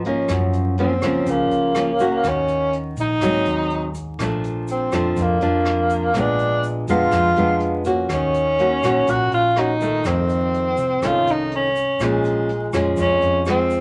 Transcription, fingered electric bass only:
0.00 0.25 G#1 medium
0.28 0.98 F#2 medium
1.02 1.25 C#2 medium
1.26 1.49 C#2 medium
1.50 2.20 C#2 medium
2.24 2.93 D#2 medium
2.97 3.20 A#1 medium
3.21 3.44 G#1 medium
3.46 4.15 D#2 medium
4.19 4.88 A#1 medium
4.92 5.15 F2 medium
5.17 5.40 F2 medium
5.42 6.11 F2 medium
6.14 6.83 A#1 medium
6.87 7.10 F2 medium
7.12 7.34 F2 medium
7.37 8.06 F2 medium
8.09 8.79 D#2 loud
8.83 9.05 A#1 medium
9.07 9.30 A#1 medium
9.32 10.01 A#1 medium
10.05 10.74 F2 medium
10.78 11.01 C2 medium
11.02 11.25 C2 medium
11.27 11.96 C2 medium
12.00 12.69 A#1 loud
12.73 12.96 F2 medium
12.98 13.20 F2 medium
13.22 13.80 F2 medium

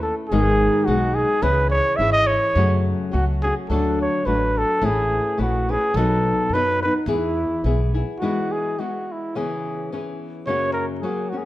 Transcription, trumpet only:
0.03 0.15 A4 medium
0.29 0.87 G#4 loud
0.85 1.16 F#4 medium
1.15 1.44 G#4 loud
1.43 1.70 B4 loud
1.70 1.98 C#5 loud
1.96 2.12 E5 loud
2.12 2.28 D#5 loud
2.27 2.85 C#5 loud
3.12 3.25 F#4 medium
3.42 3.54 G#4 medium
3.69 3.97 A4 medium
4.01 4.27 C#5 loud
4.26 4.59 B4 loud
4.58 4.86 A4 medium
4.85 5.40 G#4 loud
5.41 5.72 F#4 medium
5.71 5.98 G#4 loud
5.96 6.55 A4 medium
6.53 6.82 B4 loud
6.82 6.94 B4 loud
7.08 7.91 E4 medium
8.19 8.53 F#4 medium
8.52 8.81 G#4 medium
8.80 9.13 F#4 medium
9.12 9.38 E4 medium
9.37 9.92 G#4 medium
10.46 10.72 C#5 medium
10.73 10.85 A#4 medium
10.99 11.31 G#4 medium
11.29 11.39 F#4 medium
11.38 11.45 G#4 medium

